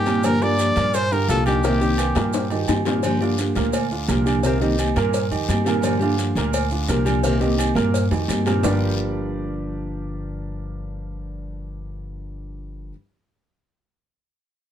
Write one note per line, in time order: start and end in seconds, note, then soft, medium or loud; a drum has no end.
0.00 0.70 G2 medium
0.00 0.20 D#4 medium
0.00 0.27 G4 loud
0.06 0.35 A#2 medium
0.06 0.23 D#3 medium
0.06 0.35 A#3 medium
0.06 0.23 A#3 medium
0.06 0.23 C4 medium
0.06 0.23 G4 medium
0.06 0.35 A#4 medium
0.06 cowbell medium
0.06 low agogo medium
0.06 short guiro medium
0.06 maracas soft
0.23 0.40 D3 medium
0.23 0.40 F3 medium
0.23 0.41 A#3 medium
0.23 0.40 D4 medium
0.23 0.42 G4 medium
0.23 0.39 G4 medium
0.23 0.44 A#4 medium
0.23 cowbell loud
0.23 low agogo loud
0.23 long guiro medium
0.23 maracas medium
0.41 0.70 D3 medium
0.41 0.56 F3 medium
0.41 0.57 A#3 medium
0.41 0.58 D4 medium
0.41 0.70 D4 medium
0.41 0.70 F4 medium
0.41 0.58 G4 medium
0.41 0.95 A#4 medium
0.41 0.96 D5 loud
0.41 low agogo medium
0.41 maracas soft
0.58 0.92 F3 medium
0.58 0.93 A#3 medium
0.58 0.93 D4 medium
0.58 0.93 G4 medium
0.58 cowbell medium
0.58 short guiro medium
0.58 maracas medium
0.76 1.25 G2 loud
0.76 1.05 A#2 medium
0.76 1.05 A#3 medium
0.76 1.05 A#4 medium
0.76 cowbell medium
0.76 low agogo medium
0.76 short guiro medium
0.76 maracas soft
0.93 1.11 G4 medium
0.93 1.14 C5 loud
0.93 muted nylon-string guitar stroke medium
0.93 cowbell loud
0.93 low agogo medium
0.93 long guiro medium
0.93 maracas medium
1.11 1.26 D3 medium
1.11 1.26 D4 medium
1.11 1.26 F4 medium
1.11 1.29 G4 medium
1.11 1.29 A#4 medium
1.11 maracas soft
1.28 2.10 C2 medium
1.28 1.57 A#2 medium
1.28 1.45 F3 medium
1.28 1.57 A#3 medium
1.28 1.46 A#3 soft
1.28 1.46 D4 medium
1.28 1.46 F4 medium
1.28 1.45 G4 medium
1.28 1.45 A4 loud
1.28 1.58 A#4 medium
1.28 cowbell medium
1.28 low timbale medium
1.28 low agogo medium
1.28 short guiro medium
1.28 maracas medium
1.46 1.64 F3 medium
1.46 1.63 A#3 medium
1.46 1.64 D4 medium
1.46 2.83 D#4 medium
1.46 1.63 G4 medium
1.46 2.82 G4 medium
1.46 low agogo loud
1.46 short guiro medium
1.46 maracas soft
1.63 1.78 A#2 medium
1.63 1.80 C3 medium
1.63 1.81 D#3 medium
1.63 1.78 A#3 medium
1.63 1.81 A#3 medium
1.63 1.81 C4 medium
1.63 1.79 G4 medium
1.63 1.78 A#4 medium
1.63 cowbell loud
1.63 high bongo loud
1.63 long guiro medium
1.63 maracas medium
1.81 2.10 D#3 medium
1.81 1.97 D#3 medium
1.81 1.98 A#3 medium
1.81 1.98 C4 medium
1.81 2.10 D#4 medium
1.81 1.98 G4 medium
1.81 2.10 G4 medium
1.81 cowbell medium
1.81 maracas soft
1.98 2.32 D#3 medium
1.98 2.33 A#3 medium
1.98 2.33 C4 medium
1.98 2.33 G4 medium
1.98 cowbell medium
1.98 high timbale loud
1.98 low agogo loud
1.98 short guiro medium
1.98 maracas medium
2.15 2.65 G2 loud
2.15 2.45 A#2 medium
2.15 2.45 A#3 medium
2.15 2.45 A#4 medium
2.15 cowbell medium
2.15 high bongo loud
2.15 low timbale medium
2.15 low agogo medium
2.15 short guiro medium
2.15 maracas soft
2.33 muted nylon-string guitar stroke medium
2.33 cowbell loud
2.33 low bongo medium
2.33 long guiro medium
2.33 maracas medium
2.50 2.80 D#3 medium
2.50 2.80 D#4 medium
2.50 2.80 G4 medium
2.50 low timbale medium
2.50 low agogo medium
2.50 maracas soft
2.68 3.50 G2 medium
2.68 2.85 D#3 soft
2.68 2.85 A#3 medium
2.68 2.85 C4 medium
2.68 2.84 G4 medium
2.68 cowbell medium
2.68 low bongo loud
2.68 low timbale medium
2.68 low agogo loud
2.68 short guiro medium
2.68 maracas medium
2.85 3.01 A#2 medium
2.85 3.03 D#3 medium
2.85 3.03 A#3 medium
2.85 3.01 A#3 medium
2.85 3.03 C4 medium
2.85 3.02 G4 medium
2.85 3.01 A#4 medium
2.85 cowbell medium
2.85 low bongo loud
2.85 low timbale medium
2.85 low agogo medium
2.85 short guiro medium
2.85 maracas soft
3.03 3.20 D3 medium
3.03 3.20 F3 medium
3.03 3.21 A#3 medium
3.03 3.20 D4 medium
3.03 3.19 G4 medium
3.03 cowbell loud
3.03 low agogo loud
3.03 long guiro medium
3.03 maracas medium
3.21 3.50 D3 medium
3.21 3.37 F3 medium
3.21 3.38 A#3 medium
3.21 3.38 D4 medium
3.21 3.50 D4 medium
3.21 3.51 F4 medium
3.21 3.38 G4 medium
3.21 low agogo loud
3.21 maracas soft
3.38 3.72 F3 medium
3.38 3.72 A#3 medium
3.38 3.72 D4 medium
3.38 3.73 G4 medium
3.38 cowbell medium
3.38 short guiro medium
3.38 maracas medium
3.55 4.05 D2 loud
3.55 3.85 A#2 medium
3.55 3.85 A#3 medium
3.55 3.85 A#4 medium
3.55 cowbell medium
3.55 low agogo medium
3.55 short guiro medium
3.55 maracas soft
3.73 muted nylon-string guitar stroke medium
3.73 cowbell loud
3.73 low agogo loud
3.73 long guiro medium
3.73 maracas medium
3.91 4.06 D3 medium
3.91 4.06 D4 medium
3.91 4.06 F4 medium
3.91 maracas soft
4.07 4.90 C2 loud
4.07 4.37 A#2 medium
4.07 4.25 F3 medium
4.07 4.37 A#3 medium
4.07 4.25 A#3 medium
4.07 4.25 D4 medium
4.07 4.24 G4 medium
4.07 4.38 A#4 medium
4.07 cowbell medium
4.07 low timbale medium
4.07 low agogo medium
4.07 short guiro medium
4.07 maracas medium
4.26 4.44 F3 medium
4.26 4.43 A#3 medium
4.26 4.43 D4 medium
4.26 4.43 G4 medium
4.26 low agogo loud
4.26 short guiro medium
4.26 maracas soft
4.43 4.58 A#2 medium
4.43 4.60 C3 medium
4.43 4.61 D#3 medium
4.43 4.61 A#3 medium
4.43 4.58 A#3 medium
4.43 4.60 C4 loud
4.43 4.59 G4 loud
4.43 4.59 A#4 medium
4.43 cowbell loud
4.43 long guiro medium
4.43 maracas medium
4.61 4.90 D#3 medium
4.61 4.77 D#3 medium
4.61 4.78 A#3 medium
4.61 4.78 C4 medium
4.61 4.90 D#4 medium
4.61 4.78 G4 medium
4.61 4.90 G4 medium
4.61 cowbell medium
4.61 maracas soft
4.78 5.11 D#3 medium
4.78 5.12 A#3 medium
4.78 5.12 C4 medium
4.78 5.12 G4 medium
4.78 cowbell medium
4.78 low agogo loud
4.78 short guiro medium
4.78 maracas medium
4.96 5.29 G2 loud
4.96 5.25 A#2 loud
4.96 5.25 A#3 loud
4.96 5.26 A#4 loud
4.96 cowbell medium
4.96 low agogo medium
4.96 short guiro medium
4.96 maracas soft
5.12 muted nylon-string guitar stroke medium
5.12 cowbell loud
5.12 long guiro medium
5.12 maracas medium
5.31 5.47 F2 medium
5.31 5.60 D#3 medium
5.31 5.60 D#4 medium
5.31 5.60 G4 medium
5.31 low agogo medium
5.31 maracas soft
5.48 6.30 G2 loud
5.48 5.65 D#3 soft
5.48 5.64 A#3 medium
5.48 5.64 C4 medium
5.48 5.63 G4 medium
5.48 cowbell medium
5.48 low timbale medium
5.48 low agogo loud
5.48 short guiro medium
5.48 maracas medium
5.64 5.95 A#2 medium
5.64 5.81 D#3 medium
5.64 5.81 A#3 medium
5.64 5.96 A#3 medium
5.64 5.82 C4 medium
5.64 5.82 G4 medium
5.64 5.95 A#4 medium
5.64 cowbell medium
5.64 low agogo medium
5.64 short guiro medium
5.64 maracas soft
5.81 5.99 D3 medium
5.81 5.99 F3 medium
5.81 6.00 A#3 medium
5.81 5.99 D4 medium
5.81 5.98 G4 medium
5.81 cowbell loud
5.81 low agogo loud
5.81 long guiro medium
5.81 maracas medium
5.99 6.30 D3 medium
5.99 6.16 F3 medium
5.99 6.17 A#3 medium
5.99 6.18 D4 medium
5.99 6.31 D4 medium
5.99 6.31 F4 medium
5.99 6.17 G4 medium
5.99 low agogo medium
5.99 maracas soft
6.17 6.52 F3 soft
6.17 6.52 A#3 medium
6.17 6.52 D4 medium
6.17 6.53 G4 medium
6.17 cowbell medium
6.17 short guiro medium
6.17 maracas medium
6.35 6.85 D2 loud
6.35 6.65 A#2 medium
6.35 6.66 A#3 loud
6.35 6.66 A#4 loud
6.35 cowbell medium
6.35 low agogo medium
6.35 short guiro medium
6.35 maracas soft
6.52 muted nylon-string guitar stroke medium
6.52 cowbell loud
6.52 low agogo loud
6.52 long guiro medium
6.52 maracas medium
6.71 6.85 D3 medium
6.71 6.86 D4 medium
6.71 6.86 F4 medium
6.71 maracas soft
6.87 7.70 C2 loud
6.87 7.17 A#2 medium
6.87 7.05 F3 medium
6.87 7.05 A#3 medium
6.87 7.18 A#3 medium
6.87 7.05 D4 medium
6.87 7.04 G4 medium
6.87 7.18 A#4 medium
6.87 cowbell medium
6.87 low timbale medium
6.87 low agogo medium
6.87 short guiro medium
6.87 maracas medium
7.05 7.23 F3 medium
7.05 7.23 A#3 medium
7.05 7.23 D4 medium
7.05 7.22 G4 medium
7.05 low agogo loud
7.05 short guiro medium
7.05 maracas soft
7.23 7.38 A#2 medium
7.23 7.40 C3 medium
7.23 7.41 D#3 medium
7.23 7.38 A#3 medium
7.23 7.41 A#3 medium
7.23 7.39 C4 medium
7.23 7.39 G4 loud
7.23 7.38 A#4 medium
7.23 cowbell loud
7.23 high timbale medium
7.23 long guiro medium
7.23 maracas medium
7.40 7.70 D#3 medium
7.40 7.57 D#3 medium
7.40 7.58 A#3 medium
7.40 7.58 C4 medium
7.40 7.70 D#4 medium
7.40 7.57 G4 medium
7.40 7.70 G4 medium
7.40 cowbell medium
7.40 high timbale medium
7.40 maracas soft
7.58 7.92 D#3 medium
7.58 7.93 A#3 soft
7.58 7.93 C4 medium
7.58 7.93 G4 soft
7.58 cowbell medium
7.58 low agogo loud
7.58 short guiro medium
7.58 maracas medium
7.75 8.08 G2 loud
7.75 8.04 A#2 medium
7.75 8.05 A#3 medium
7.75 8.05 A#4 loud
7.75 cowbell medium
7.75 low timbale medium
7.75 low agogo medium
7.75 short guiro medium
7.75 maracas soft
7.93 muted nylon-string guitar stroke medium
7.93 cowbell loud
7.93 long guiro medium
7.93 maracas medium
8.11 8.27 F2 medium
8.11 8.40 D#3 medium
8.11 8.40 D#4 medium
8.11 8.40 G4 medium
8.11 low timbale medium
8.11 low agogo medium
8.11 maracas soft
8.28 8.59 G2 medium
8.28 8.45 D#3 soft
8.28 8.46 A#3 medium
8.28 8.46 C4 medium
8.28 8.45 G4 medium
8.28 cowbell medium
8.28 low timbale medium
8.28 low agogo loud
8.28 short guiro medium
8.28 maracas medium
8.46 8.60 A#2 medium
8.46 8.64 D#3 medium
8.46 8.61 A#3 medium
8.46 8.64 A#3 medium
8.46 8.64 C4 medium
8.46 8.63 G4 medium
8.46 8.61 A#4 medium
8.46 cowbell medium
8.46 low timbale medium
8.46 low agogo medium
8.46 short guiro medium
8.46 maracas soft
8.63 12.89 G1 loud
8.63 12.94 G2 medium
8.63 12.94 D3 medium
8.63 12.94 F3 medium
8.63 12.89 G3 medium
8.63 12.95 A#3 medium
8.63 12.90 D4 medium
8.63 12.95 D4 medium
8.63 12.90 F4 medium
8.63 12.90 G4 medium
8.63 12.90 A#4 medium
8.63 12.90 D5 loud
8.63 low bongo loud
8.63 low timbale loud
8.63 long guiro loud
8.63 maracas medium
8.67 12.96 G4 medium